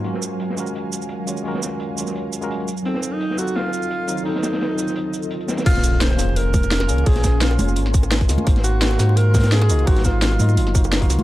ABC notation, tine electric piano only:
X:1
M:4/4
L:1/16
Q:"Swing 16ths" 1/4=171
K:Bbm
V:1 name="Tine electric piano"
[A,DFGB]6 [A,DFGB]8 [A,DFGd]2 | [A,DFGB]6 [A,DFGd]4- [A,DFGd] [A,DFGB] z4 | [G,CEF=A]6 [G,CEFA]8 [G,CEFc]2 | [G,CEF=A]6 [G,CEFc]4- [G,CEFc] z3 [G,CEFe] z |
[B,DFAc]6 [B,DFAc]8 [B,DFAd]2 | [B,DFAc]6 [B,DFAd]4- [B,DFAd] z3 [B,DFAe] z | [B,EGcf]6 [B,EFGc]8 [B,EFGe]2 | [G,B,EFc]6 [G,B,EFe]4 [B,EFGc] z2 [B,EFGf]3 |]